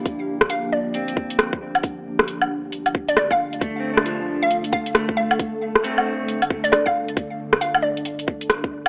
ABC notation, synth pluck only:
X:1
M:4/4
L:1/16
Q:"Swing 16ths" 1/4=135
K:Dphr
V:1 name="Synth pluck"
z4 f2 d3 z6 z | z8 z3 d d f2 z | z6 z f2 z f2 z2 f2- | f4 z6 z d d f2 z |
z4 f2 d3 z6 z |]